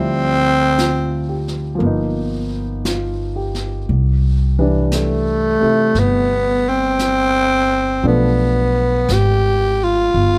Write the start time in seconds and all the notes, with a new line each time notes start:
Already playing: D2 F3 G3 C4 E4
0.78 F4, brush sweep, snare, hi-hat pedal
1.29 G4
1.48 snare
1.75 F3 A#3
1.80 G1 B3, brush sweep
1.86 D#4
2.85 F4, brush sweep, snare, hi-hat pedal
3.36 G4
3.55 snare
3.88 C2, brush sweep
4.59 E3 G3 D4 B4
4.92 A3, brush sweep, snare, hi-hat pedal
5.60 C3 A3 E4, muted upright bass stroke
5.95 G1, brush sweep, snare
5.99 B3
6.69 C4
6.99 brush sweep, snare, hi-hat pedal
8.03 B1 F3 A3 B3 D4, brush sweep
8.08 B3
9.08 G#1, brush sweep, snare, hi-hat pedal
9.13 G4
9.84 F4
10.14 G1, brush sweep